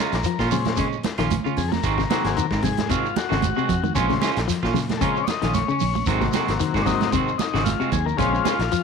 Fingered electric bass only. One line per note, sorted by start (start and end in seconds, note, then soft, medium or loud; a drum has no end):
0.13 0.22 A#1 medium
0.39 1.00 A#2 medium
1.18 1.39 A#1 medium
1.45 muted fingered electric bass stroke soft
1.57 1.78 F2 medium
1.84 2.04 G#1 loud
2.25 2.34 G#1 medium
2.51 3.12 G#2 medium
3.32 3.51 G#1 medium
3.58 muted fingered electric bass stroke soft
3.69 3.89 F2 medium
3.96 4.16 A#1 loud
4.37 4.46 A#1 medium
4.63 5.24 A#2 medium
5.43 5.63 A#1 medium
5.70 muted fingered electric bass stroke soft
5.81 6.01 A#1 medium
6.07 6.27 G#1 medium
6.48 6.57 G#1 medium
6.74 7.35 G#2 medium
7.54 7.74 G#1 medium
7.81 muted fingered electric bass stroke soft
7.92 8.12 D#2 medium
8.19 8.39 A#1 medium
8.59 8.68 A#1 medium